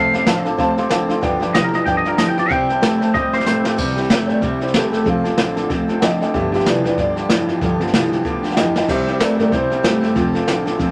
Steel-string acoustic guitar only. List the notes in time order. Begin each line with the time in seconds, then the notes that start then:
Already playing: F3 C4 F4 A4
0.13 C4 F4 A4
0.25 F3 C4 F4 A4
0.44 C4 F4 A4
0.57 F3 C4 F4 A4
0.76 C4 F4 A4
0.89 F3 C4 F4 A4
1.08 C4 F4 A4
1.21 G2 D3 F3 B3 F4 G4
1.40 F3 B3 F4 G4
1.53 G2 D3 F3 B3 F4 G4
1.72 F3 B3 F4 G4
1.86 F3 B3 F4 G4
2.05 F3 B3 F4 G4
2.17 G2 D3 F3 B3 F4 G4
2.37 F3 B3 F4 G4
2.50 C3 G3 C4 E4 G4
2.68 C4 E4 G4
2.81 C3 G3 C4 E4 G4
2.99 C4 E4 G4
3.13 G3 C4 E4 G4
3.32 C4 E4 G4
3.45 C3 G3 C4 E4 G4
3.64 C4 E4 G4
3.76 C3 G3 C4 E4 G4
3.96 C4 E4 G4
4.09 C3 G3 C4 E4 G4
4.28 C4 E4 G4
4.41 G3 C4 E4 G4
4.61 C4 E4 G4
4.73 C3 G3 C4 E4 G4
4.92 C4 E4 G4
5.04 F3 C4 F4 A4
5.24 C4 F4 A4
5.37 F3 C4 F4 A4
5.57 C4 F4 A4
5.69 F3 C4 F4 A4
5.88 C4 F4 A4
6.01 F3 C4 F4 A4
6.20 C4 F4 A4
6.34 G2 D3 F3 B3 F4 G4
6.52 F3 B3 F4 G4
6.66 G2 D3 F3 B3 F4 G4
6.84 F3 B3 F4 G4
6.97 F3 B3 F4 G4
7.16 F3 B3 F4 G4
7.30 G2 D3 F3 B3 F4 G4
7.49 F3 B3 F4 G4
7.61 G2 D3 F3 B3 F4 G4
7.80 F3 B3 F4 G4
7.94 G2 D3 F3 B3 F4 G4
8.12 F3 B3 F4 G4
8.23 F3 B3 F4 G4
8.43 F3 B3 F4 G4
8.56 G2 D3 F3 B3 F4 G4
8.74 F3 B3 F4 G4
8.88 C3 G3 C4 E4 G4
9.06 C4 E4 G4
9.19 C3 G3 C4 E4 G4
9.39 C4 E4 G4
9.51 G3 C4 E4 G4
9.70 C4 E4 G4
9.83 C3 G3 C4 E4 G4
10.01 C4 E4 G4
10.15 F3 C4 F4 A4
10.33 C4 F4 A4
10.47 F3 C4 F4 A4
10.66 C4 F4 A4
10.78 F3 C4 F4 A4